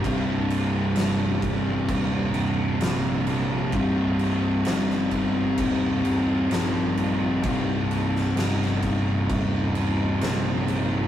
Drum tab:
CC |x-x-x-x-x-x-x-x-|x-x-x-x-x-x-x-x-|x-x-x-x-x-x-x-x-|
SD |----o-------o---|----oo------o---|---ooo------o---|
BD |o-----o-o-------|o-----o-o-------|o-----o-o-------|